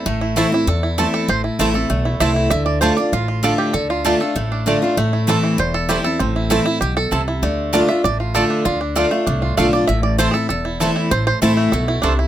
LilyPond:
<<
  \new Staff \with { instrumentName = "Mandolin" } { \time 4/4 \key a \minor \tempo 4 = 195 r4 <a e' c'' a''>8 r4. <a e' c'' a''>8 r8 | r4 <a e' c'' a''>8 r4. <a e' c'' a''>8 r8 | r4 <a f' d'' a''>8 r4. <a f' d'' a''>8 r8 | r4 <a f' d'' a''>8 r4. <a f' d'' a''>8 r8 |
r4 <a e' c'' a''>8 r4. <a e' c'' a''>8 r8 | r4 <a e' c'' a''>8 r4. <a e' c'' a''>8 r8 | r4 <a f' d'' a''>8 r4. <a f' d'' a''>8 r8 | r4 <a f' d'' a''>8 r4. <a f' d'' a''>8 r8 |
r4 <a e' c'' a''>8 r4. <a e' c'' a''>8 r8 | r4 <a e' c'' a''>8 r4. <a e' c'' a''>8 r8 | }
  \new Staff \with { instrumentName = "Five-string banjo" } { \time 4/4 \key a \minor << { r4. e'8 a'4. a'8 | c''4. r4. e''4 | e''8 d''8 c''8 d''8 f'4. g'8 | a'8 f'2~ f'8 r4 |
r4 a'4 c''8 a'8 g'8 a'8 | c'4. e'8 g'8 a'4.~ | a'4 r8 e''8 d''4 a'4 | f'8 r2 r8 f''8 d''8 |
e''8 d''8 c''16. gis'32 a'8 a'4 r4 | c''8 c''4. a'4 d'8 r8 | } \\ { a8 e'8 e'4. e'8 a'4~ | a'8 e'8 a8 a'8 a8 e'4 e'8 | r2 r8 f'8 a'4~ | a'8 r8 a8 a'8 a8 d'8 a8 f'8 |
a8 e'4 e4. r4 | r8 e'8 e'4. r8 a'8 e'8 | a4 d'4. f'4 d'8~ | d'8 d'8 f'8 a8 d'8 f'4. |
r2 r8 e'8 a'8 e'8~ | e'4 e'8 a4 e'4 e'8 | } >> }
  \new Staff \with { instrumentName = "Steel-string acoustic guitar" } { \time 4/4 \key a \minor << { r4 <e a c' e'>8 <c' e'>8 r4 <e a c' e'>4 | r4 <e a c' e'>8 <c' e'>8 r4 <e a c' e'>4 | r4 <d a d' f'>8 <d' f'>8 r4 <d a d' f'>4 | r4 <d a d' f'>8 <d' f'>8 r4 <d a d' f'>8 <d' f'>8 |
r4 <e a c' e'>4 r4 <e a c' e'>8 <c' e'>8 | r4 <e a c' e'>8 <c' e'>8 r2 | r4 <d a d' f'>8 <d' f'>8 r4 <d a d' f'>4 | r4 <d a d' f'>8 <d' f'>8 r4 <d a d' f'>8 <d' f'>8 |
r4 <e a c' e'>8 <c' e'>8 r4 <e a c' e'>4 | r4 <e a c' e'>4 r2 | } \\ { a,2 e,2 | a,2 e,2 | d2 a,2 | d2 a,2 |
a,2 e,2 | a,2 b,4 c4 | d2 a,2 | d2 a,2 |
a,2 e,2 | a,2 b,4 c4 | } >> }
  \new Staff \with { instrumentName = "Upright bass" } { \clef bass \time 4/4 \key a \minor a,,2 e,2 | a,,4 a,,4 b,,4 c,4 | d,2 a,,2 | d,2 a,,2 |
a,,2 e,,2 | a,,2 b,,4 c,4 | d,2 a,,2 | d,2 c,4 b,,4 |
a,,2 e,,2 | a,,4 a,,4 b,,4 c,4 | }
>>